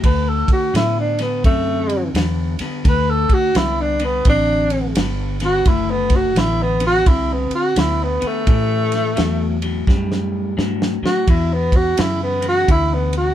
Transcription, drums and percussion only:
0.04 kick, ride
0.48 kick, ride
0.75 snare, ride
1.19 snare, ride
1.44 kick, ride
1.89 ride
2.15 snare, ride
2.59 snare, ride
2.85 kick, snare, ride
3.29 kick, ride
3.55 snare, ride
3.99 ride
4.25 kick, ride
4.70 ride
4.95 snare, ride
5.40 snare, ride
5.65 kick, snare, ride
6.10 kick, snare, ride
6.36 snare, ride
6.80 ride
7.06 kick, ride
7.51 ride
7.76 snare, ride
8.22 ride
8.47 kick, ride
8.92 snare, ride
9.17 snare, ride
9.62 ride
9.87 kick, snare
10.12 snare
10.59 snare
10.82 snare
11.06 snare
11.27 kick, ride
11.72 kick, ride
11.97 snare, ride
12.42 ride
12.68 kick, ride
13.13 ride

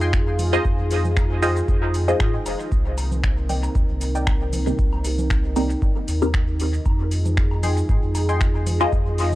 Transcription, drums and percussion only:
0.01 shaker
0.13 finger snap, kick, shaker
0.39 open hi-hat, low conga, shaker
0.53 low woodblock, shaker
0.65 kick, shaker
0.91 open hi-hat, shaker
1.05 low conga, shaker
1.17 finger snap, kick, low woodblock, shaker
1.42 open hi-hat, shaker
1.56 shaker
1.68 kick, shaker
1.82 low woodblock
1.94 open hi-hat, shaker
2.08 shaker
2.20 finger snap, kick, shaker
2.46 open hi-hat, low woodblock, shaker
2.60 shaker
2.72 kick, shaker
2.98 open hi-hat, low woodblock, shaker
3.12 low conga, shaker
3.23 finger snap, kick, shaker
3.49 open hi-hat, low conga, shaker
3.63 low woodblock, shaker
3.75 kick, shaker
4.01 open hi-hat, shaker
4.15 shaker
4.27 finger snap, kick, low woodblock, shaker
4.53 open hi-hat, low conga, shaker
4.67 shaker
4.79 kick, shaker
4.93 low woodblock
5.04 open hi-hat, shaker
5.18 low conga, shaker
5.30 finger snap, kick, shaker
5.56 open hi-hat, low woodblock, shaker
5.70 shaker
5.82 kick, shaker
6.08 open hi-hat, shaker
6.22 low woodblock, shaker
6.34 finger snap, kick, shaker
6.60 open hi-hat, shaker
6.74 shaker
6.86 kick, low woodblock, shaker
7.11 open hi-hat, shaker
7.25 low conga, shaker
7.37 finger snap, kick, shaker
7.51 low woodblock
7.63 open hi-hat, low conga, shaker
7.77 shaker
7.89 kick, shaker
8.15 open hi-hat, low woodblock, shaker
8.29 shaker
8.41 finger snap, kick, shaker
8.67 open hi-hat, low conga, shaker
8.81 low woodblock, shaker
8.92 kick, shaker
9.18 open hi-hat, shaker

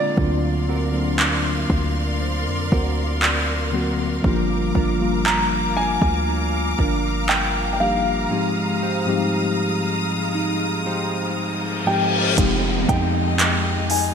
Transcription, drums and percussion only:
0.17 kick
1.19 clap
1.70 kick
2.72 kick
3.22 clap
4.24 kick
4.75 kick
5.26 clap
6.02 kick
6.79 kick
7.29 clap
12.38 kick, closed hi-hat
12.89 kick, closed hi-hat
13.39 clap, closed hi-hat
13.90 open hi-hat

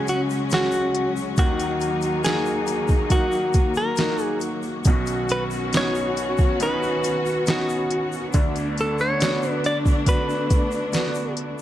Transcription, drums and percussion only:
0.07 closed hi-hat, shaker
0.30 shaker
0.50 snare, closed hi-hat, shaker
0.72 shaker
0.95 closed hi-hat
1.17 shaker
1.37 kick, closed hi-hat, shaker
1.60 closed hi-hat, shaker
1.81 closed hi-hat, shaker
2.01 closed hi-hat, shaker
2.24 snare, closed hi-hat, shaker
2.46 shaker
2.67 closed hi-hat, shaker
2.88 kick, shaker
3.10 kick, closed hi-hat, shaker
3.32 shaker
3.53 kick, closed hi-hat, shaker
3.75 shaker
3.96 snare, closed hi-hat, shaker
4.18 shaker
4.40 closed hi-hat, shaker
4.63 shaker
4.84 kick, closed hi-hat, shaker
5.06 closed hi-hat, shaker
5.29 closed hi-hat, shaker
5.51 shaker
5.73 snare, closed hi-hat, shaker
5.95 shaker
6.17 closed hi-hat, shaker
6.38 kick, shaker
6.60 closed hi-hat, shaker
6.83 shaker
7.04 closed hi-hat, shaker
7.26 shaker
7.46 snare, closed hi-hat, shaker
7.69 shaker
7.91 closed hi-hat
8.12 shaker
8.33 kick, closed hi-hat, shaker
8.56 closed hi-hat, shaker
8.78 closed hi-hat, shaker
8.99 shaker
9.21 snare, closed hi-hat, shaker
9.43 shaker
9.64 closed hi-hat, shaker
9.86 kick, shaker
10.06 kick, closed hi-hat, shaker
10.29 shaker
10.50 kick, closed hi-hat, shaker
10.72 shaker
10.93 snare, closed hi-hat, shaker
11.15 shaker
11.37 closed hi-hat
11.59 shaker

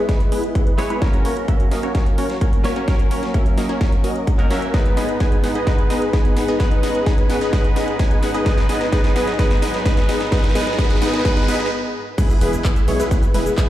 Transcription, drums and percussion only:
0.09 kick, snare, closed hi-hat
0.20 closed hi-hat
0.32 open hi-hat
0.44 closed hi-hat
0.55 kick, closed hi-hat
0.67 closed hi-hat
0.78 snare, open hi-hat
0.90 closed hi-hat
1.02 kick, snare, closed hi-hat
1.13 closed hi-hat
1.25 open hi-hat
1.37 closed hi-hat
1.48 kick, closed hi-hat
1.60 closed hi-hat
1.71 snare, open hi-hat
1.83 closed hi-hat
1.95 kick, snare, closed hi-hat
2.06 closed hi-hat
2.18 open hi-hat
2.30 snare, closed hi-hat
2.41 kick, closed hi-hat
2.53 closed hi-hat
2.64 snare, open hi-hat
2.76 closed hi-hat
2.88 kick, snare, closed hi-hat
2.99 closed hi-hat
3.11 open hi-hat
3.23 snare, closed hi-hat
3.34 kick, closed hi-hat
3.46 closed hi-hat
3.58 snare, open hi-hat
3.69 closed hi-hat
3.81 kick, snare, closed hi-hat
3.92 closed hi-hat
4.04 open hi-hat
4.16 closed hi-hat
4.27 kick, closed hi-hat
4.39 closed hi-hat
4.50 snare, open hi-hat
4.62 closed hi-hat
4.74 kick, snare, closed hi-hat
4.86 closed hi-hat
4.97 snare, open hi-hat
5.09 closed hi-hat
5.20 kick, snare, closed hi-hat
5.32 closed hi-hat
5.44 snare, open hi-hat
5.55 closed hi-hat
5.67 kick, snare, closed hi-hat
5.79 closed hi-hat
5.90 snare, open hi-hat
6.02 closed hi-hat
6.13 kick, snare, closed hi-hat
6.25 closed hi-hat
6.37 snare, open hi-hat
6.48 closed hi-hat
6.60 kick, snare, closed hi-hat
6.71 closed hi-hat
6.83 snare, open hi-hat
6.95 closed hi-hat
7.06 kick, snare, closed hi-hat
7.18 closed hi-hat
7.30 snare, open hi-hat
7.41 closed hi-hat
7.53 kick, snare, closed hi-hat
7.65 closed hi-hat
7.76 snare, open hi-hat
7.88 closed hi-hat
7.99 kick, snare, closed hi-hat
8.11 closed hi-hat
8.23 snare, open hi-hat
8.34 closed hi-hat
8.46 kick, snare, closed hi-hat
8.58 snare, closed hi-hat
8.69 snare, open hi-hat
8.81 snare, closed hi-hat
8.92 kick, snare, closed hi-hat
9.04 snare, closed hi-hat
9.16 snare, open hi-hat
9.27 snare, closed hi-hat
9.39 kick, snare, closed hi-hat
9.51 snare, closed hi-hat
9.62 snare, open hi-hat
9.74 snare, closed hi-hat
9.86 kick, snare, closed hi-hat
9.97 snare, closed hi-hat
10.09 snare, open hi-hat
10.20 snare, closed hi-hat
10.32 kick, snare, closed hi-hat
10.38 snare
10.44 snare, closed hi-hat
10.49 snare
10.55 snare, open hi-hat
10.61 snare
10.67 snare, closed hi-hat
10.73 snare
10.79 kick, snare, closed hi-hat
10.84 snare
10.90 snare, closed hi-hat
10.96 snare
11.02 snare, open hi-hat
11.08 snare
11.13 snare, closed hi-hat
11.19 snare
11.25 kick, snare, closed hi-hat
11.31 snare
11.37 snare, closed hi-hat
11.43 snare
11.48 snare, open hi-hat
11.54 snare
11.60 snare, closed hi-hat
11.66 snare
12.18 kick, closed hi-hat, crash, cabasa
12.30 closed hi-hat, cabasa
12.41 open hi-hat, ride
12.53 closed hi-hat, cabasa
12.65 kick, clap, closed hi-hat, cabasa
12.76 closed hi-hat, cabasa
12.88 open hi-hat, ride
12.99 closed hi-hat, cabasa
13.11 kick, closed hi-hat, cabasa
13.23 closed hi-hat, cabasa
13.34 open hi-hat, ride
13.46 closed hi-hat, cabasa
13.58 kick, clap, closed hi-hat, cabasa

